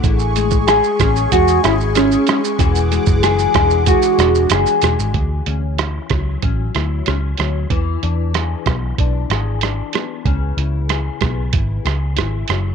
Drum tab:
HH |x-x-x-x-x-x-x-x-|x-x-x-x-x-x-x-x-|x-x-x-x-x-x-x-x-|x-x-x-x-x-x-x-x-|
SH |xxxxxxxxxxxxxxxx|xxxxxxxxxxxxxxxx|----------------|----------------|
SD |----r-r---r-r-r-|----r-r---r-r-r-|----r-r---r-r-r-|----r-r---r-r-r-|
BD |o--o--o-o-------|o--o--o-o-------|o-----o-o-------|o-----o-o-------|

HH |x-x-x-x-x-x-x-x-|
SH |----------------|
SD |----r-r---r-r-r-|
BD |o-----o-o-------|